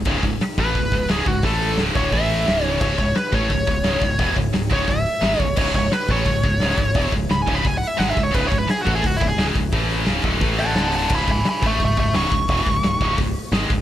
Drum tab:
CC |x-------|--------|x-------|--------|
HH |-ooooooo|oooooooo|-ooooooo|oooooooo|
SD |--o---o-|--o---o-|--o---o-|--o---o-|
BD |oo-ooo-o|o--oo---|oo-ooo-o|oo-oo--o|

CC |x-------|--------|x-------|--------|
HH |-ooooooo|oooooooo|-ooooooo|oooooooo|
SD |--o---o-|--o---o-|--o---o-|--o---o-|
BD |oo-ooo-o|oo-oo--o|oo-ooo-o|o--oo---|

CC |x-------|--------|
HH |-ooooooo|oooooooo|
SD |--o---o-|--o---o-|
BD |oo-ooo-o|oo-oo--o|